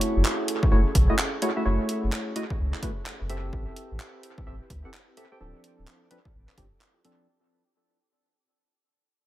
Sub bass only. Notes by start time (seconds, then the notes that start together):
0.16 F#1
0.71 F#1
0.95 B1
1.65 F#1
2.03 F#1
2.59 C#2
3.21 F#1
3.53 A1
3.91 A1
4.47 A1
4.70 D2
5.40 D1
5.78 D1
6.34 A1
6.57 G1